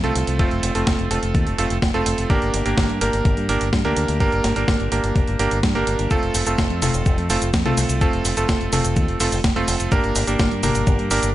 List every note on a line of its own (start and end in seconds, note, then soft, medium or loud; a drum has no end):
0.04 0.13 C2 medium
0.04 0.37 A3 medium
0.04 0.37 C4 medium
0.04 0.37 F4 medium
0.04 0.37 A4 medium
0.04 closed hi-hat soft
0.16 0.25 C2 medium
0.16 closed hi-hat medium
0.27 0.37 C2 medium
0.27 closed hi-hat medium
0.39 0.49 F1 loud
0.39 0.72 A3 medium
0.39 0.72 C4 medium
0.39 0.72 F4 medium
0.39 0.72 A4 medium
0.39 kick loud
0.39 closed hi-hat medium
0.51 0.61 F1 medium
0.51 closed hi-hat soft
0.63 0.73 F1 medium
0.63 closed hi-hat medium
0.75 0.85 F1 medium
0.75 1.08 A3 medium
0.75 1.08 C4 medium
0.75 1.08 F4 medium
0.75 1.08 A4 medium
0.75 closed hi-hat soft
0.87 0.97 F1 medium
0.87 kick loud
0.87 snare loud
0.87 closed hi-hat soft
0.99 1.08 F1 medium
0.99 closed hi-hat soft
1.11 1.20 F1 medium
1.11 1.56 A3 medium
1.11 1.56 C4 medium
1.11 1.56 F4 medium
1.11 1.56 A4 medium
1.11 closed hi-hat medium
1.23 1.32 F1 medium
1.23 closed hi-hat soft
1.35 1.44 D#2 loud
1.35 kick loud
1.35 closed hi-hat soft
1.47 1.56 F1 medium
1.47 closed hi-hat soft
1.58 1.68 F1 medium
1.58 1.76 A3 medium
1.58 1.76 C4 medium
1.58 1.76 F4 medium
1.58 1.76 A4 medium
1.58 closed hi-hat medium
1.70 1.80 F1 medium
1.70 closed hi-hat soft
1.82 1.92 F1 loud
1.82 kick loud
1.82 snare loud
1.82 closed hi-hat medium
1.94 2.04 F1 medium
1.94 2.27 A3 medium
1.94 2.27 C4 medium
1.94 2.27 F4 medium
1.94 2.27 A4 medium
1.94 closed hi-hat soft
2.06 2.16 F1 medium
2.06 closed hi-hat medium
2.18 2.28 F1 medium
2.18 closed hi-hat medium
2.30 2.39 G1 medium
2.30 2.63 A#3 medium
2.30 2.63 D4 medium
2.30 2.63 G4 medium
2.30 2.63 A#4 medium
2.30 kick loud
2.30 closed hi-hat soft
2.42 2.51 G1 medium
2.42 closed hi-hat soft
2.54 2.63 G1 medium
2.54 closed hi-hat medium
2.66 2.75 G1 medium
2.66 2.98 A#3 medium
2.66 2.98 D4 medium
2.66 2.98 G4 medium
2.66 2.98 A#4 medium
2.66 closed hi-hat soft
2.77 2.87 G1 loud
2.77 kick loud
2.77 snare loud
2.77 closed hi-hat soft
2.89 2.99 G2 medium
2.89 closed hi-hat soft
3.01 3.11 G1 medium
3.01 3.46 A#3 medium
3.01 3.46 D4 medium
3.01 3.46 G4 medium
3.01 3.46 A#4 medium
3.01 closed hi-hat medium
3.13 3.23 G1 medium
3.13 closed hi-hat soft
3.25 3.35 G1 medium
3.25 kick loud
3.25 closed hi-hat soft
3.37 3.47 G2 medium
3.37 closed hi-hat soft
3.49 3.59 G1 medium
3.49 3.67 A#3 medium
3.49 3.67 D4 medium
3.49 3.67 G4 medium
3.49 3.67 A#4 loud
3.49 closed hi-hat medium
3.61 3.70 G1 medium
3.61 closed hi-hat soft
3.73 3.82 G2 loud
3.73 kick loud
3.73 snare loud
3.73 closed hi-hat medium
3.85 3.94 D2 medium
3.85 4.18 A#3 medium
3.85 4.18 D4 medium
3.85 4.18 G4 medium
3.85 4.18 A#4 medium
3.85 closed hi-hat soft
3.97 4.06 D2 medium
3.97 closed hi-hat medium
4.08 4.18 D2 medium
4.08 closed hi-hat soft
4.20 4.30 G1 loud
4.20 4.53 A#3 medium
4.20 4.53 D4 medium
4.20 4.53 G4 medium
4.20 4.53 A#4 loud
4.20 kick loud
4.20 closed hi-hat soft
4.32 4.42 G1 medium
4.32 closed hi-hat soft
4.44 4.54 G1 medium
4.44 snare medium
4.44 closed hi-hat medium
4.56 4.66 G1 medium
4.56 4.89 A#3 medium
4.56 4.89 D4 medium
4.56 4.89 G4 medium
4.56 4.89 A#4 medium
4.56 closed hi-hat soft
4.68 4.78 G1 medium
4.68 kick loud
4.68 snare loud
4.68 closed hi-hat soft
4.80 4.89 G1 medium
4.80 closed hi-hat soft
4.92 5.01 G1 medium
4.92 5.37 A#3 medium
4.92 5.37 D4 medium
4.92 5.37 G4 medium
4.92 5.37 A#4 medium
4.92 closed hi-hat medium
5.04 5.13 G1 medium
5.04 closed hi-hat soft
5.16 5.25 F1 loud
5.16 kick loud
5.16 closed hi-hat soft
5.27 5.37 G1 medium
5.27 closed hi-hat soft
5.39 5.49 G1 medium
5.39 5.57 A#3 medium
5.39 5.57 D4 medium
5.39 5.57 G4 medium
5.39 5.57 A#4 medium
5.39 closed hi-hat medium
5.51 5.61 G1 medium
5.51 closed hi-hat soft
5.63 5.73 G2 loud
5.63 kick loud
5.63 snare loud
5.63 closed hi-hat soft
5.75 5.85 G1 medium
5.75 6.08 A#3 medium
5.75 6.08 D4 medium
5.75 6.08 G4 medium
5.75 6.08 A#4 medium
5.75 closed hi-hat soft
5.87 5.97 G1 medium
5.87 closed hi-hat medium
5.99 6.08 G1 medium
5.99 closed hi-hat soft
6.11 6.44 A3 medium
6.11 6.44 C4 medium
6.11 6.44 F4 medium
6.11 6.44 A4 loud
6.11 kick loud
6.11 closed hi-hat soft
6.11 cabasa soft
6.23 6.32 F1 medium
6.23 closed hi-hat soft
6.35 6.44 F1 medium
6.35 open hi-hat loud
6.35 cabasa medium
6.46 6.56 F1 medium
6.46 6.79 A3 medium
6.46 6.79 C4 medium
6.46 6.79 F4 medium
6.46 6.79 A4 medium
6.46 closed hi-hat soft
6.46 cabasa soft
6.58 6.68 F1 medium
6.58 kick loud
6.58 snare loud
6.58 closed hi-hat soft
6.58 cabasa soft
6.70 6.80 F2 medium
6.70 closed hi-hat soft
6.82 6.92 F1 medium
6.82 7.27 A3 medium
6.82 7.27 C4 medium
6.82 7.27 F4 medium
6.82 7.27 A4 medium
6.82 open hi-hat loud
6.82 high tom medium
6.82 cabasa medium
6.94 7.04 F1 medium
6.94 closed hi-hat soft
6.94 cabasa soft
7.06 7.16 F1 loud
7.06 kick loud
7.06 closed hi-hat soft
7.06 cabasa soft
7.18 7.27 F2 medium
7.18 closed hi-hat soft
7.30 7.39 F1 medium
7.30 7.47 A3 medium
7.30 7.47 C4 medium
7.30 7.47 F4 medium
7.30 7.47 A4 medium
7.30 open hi-hat loud
7.30 cabasa medium
7.42 7.51 F1 medium
7.42 closed hi-hat soft
7.42 cabasa soft
7.54 7.63 F2 medium
7.54 kick loud
7.54 snare loud
7.54 closed hi-hat soft
7.54 cabasa soft
7.66 7.75 C2 medium
7.66 7.98 A3 medium
7.66 7.98 C4 medium
7.66 7.98 F4 medium
7.66 7.98 A4 medium
7.66 closed hi-hat soft
7.66 high tom medium
7.77 7.87 C2 medium
7.77 open hi-hat loud
7.77 cabasa medium
7.89 7.99 C2 medium
7.89 closed hi-hat medium
7.89 cabasa soft
8.01 8.11 F1 loud
8.01 8.34 A3 medium
8.01 8.34 C4 medium
8.01 8.34 F4 medium
8.01 8.34 A4 medium
8.01 kick loud
8.01 closed hi-hat soft
8.01 cabasa soft
8.13 8.23 F1 medium
8.13 closed hi-hat soft
8.25 8.35 F1 medium
8.25 open hi-hat loud
8.25 cabasa medium
8.37 8.47 F1 medium
8.37 8.70 A3 medium
8.37 8.70 C4 medium
8.37 8.70 F4 medium
8.37 8.70 A4 medium
8.37 closed hi-hat soft
8.37 cabasa soft
8.49 8.58 F1 loud
8.49 kick medium
8.49 snare loud
8.49 closed hi-hat medium
8.49 cabasa soft
8.61 8.70 F1 medium
8.61 closed hi-hat soft
8.73 8.82 F1 medium
8.73 9.18 A3 medium
8.73 9.17 C4 medium
8.73 9.17 F4 medium
8.73 9.17 A4 medium
8.73 open hi-hat loud
8.73 high tom medium
8.73 cabasa medium
8.85 8.94 F1 medium
8.85 closed hi-hat soft
8.85 cabasa soft
8.96 9.06 D#2 loud
8.96 kick loud
8.96 closed hi-hat soft
8.96 cabasa soft
9.08 9.18 F1 medium
9.08 closed hi-hat soft
9.20 9.30 F1 medium
9.20 9.38 A3 medium
9.20 9.38 C4 medium
9.20 9.38 F4 medium
9.20 9.38 A4 medium
9.20 open hi-hat loud
9.20 cabasa medium
9.32 9.42 F1 medium
9.32 open hi-hat medium
9.32 cabasa soft
9.44 9.54 F1 loud
9.44 kick loud
9.44 snare loud
9.44 closed hi-hat medium
9.44 cabasa soft
9.56 9.66 F1 medium
9.56 9.89 A3 medium
9.56 9.89 C4 medium
9.56 9.89 F4 medium
9.56 9.89 A4 loud
9.56 closed hi-hat soft
9.68 9.78 F1 medium
9.68 open hi-hat loud
9.68 cabasa medium
9.80 9.89 F1 medium
9.80 closed hi-hat soft
9.80 cabasa soft
9.92 10.01 G1 loud
9.92 10.25 A#3 medium
9.92 10.25 D4 medium
9.92 10.25 G4 medium
9.92 10.25 A#4 loud
9.92 kick loud
9.92 closed hi-hat medium
9.92 cabasa soft
10.04 10.13 G1 medium
10.04 closed hi-hat soft
10.16 10.25 G1 medium
10.16 open hi-hat loud
10.16 cabasa medium
10.27 10.37 G1 medium
10.27 10.60 A#3 medium
10.27 10.60 D4 medium
10.27 10.60 G4 medium
10.27 10.60 A#4 medium
10.27 closed hi-hat medium
10.27 cabasa soft
10.39 10.49 G1 loud
10.39 kick loud
10.39 snare loud
10.39 closed hi-hat medium
10.39 cabasa soft
10.51 10.61 G2 medium
10.51 closed hi-hat soft
10.63 10.73 G1 medium
10.63 11.08 A#3 medium
10.63 11.08 D4 medium
10.63 11.08 G4 medium
10.63 11.08 A#4 medium
10.63 open hi-hat loud
10.63 high tom medium
10.63 cabasa medium
10.75 10.85 G1 medium
10.75 closed hi-hat soft
10.75 cabasa soft
10.87 10.97 G1 loud
10.87 kick loud
10.87 closed hi-hat medium
10.87 cabasa soft
10.99 11.08 G2 medium
10.99 closed hi-hat soft
11.11 11.20 G1 medium
11.11 11.28 A#3 medium
11.11 11.28 D4 medium
11.11 11.28 G4 medium
11.11 11.28 A#4 loud
11.11 open hi-hat loud
11.11 cabasa medium
11.23 11.32 G1 medium
11.23 closed hi-hat medium
11.23 cabasa soft